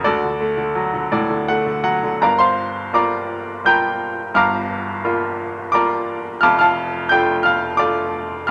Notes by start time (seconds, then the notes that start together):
0.04 D2 D4 F#4 A4 D5
0.24 D3
0.41 A3
0.57 D3
0.75 F#3
0.94 D3
1.12 A2 D5
1.30 D3
1.48 A3 F#5
1.66 D3
1.83 F#3 F#5
2.03 D3
2.22 G1 G2 A#4 D5 F5 A#5
2.39 C5 F5 C6
2.93 G3 A#3 F4 D5 A#5 D6
3.64 G3 A#3 F4 G5 A#5 G6
4.34 G1 G2 F5 A#5 D6 F6
5.04 G3 A#3 F4
5.72 G3 A#3 F4 D5 A#5 D6
6.41 F1 F2 F5 A5 D6 F6
6.59 F5 A5 F6
7.09 A3 D4 F4 G5 G6
7.43 F5 F6
7.77 A3 D4 F4 D5 F5 D6
8.47 F6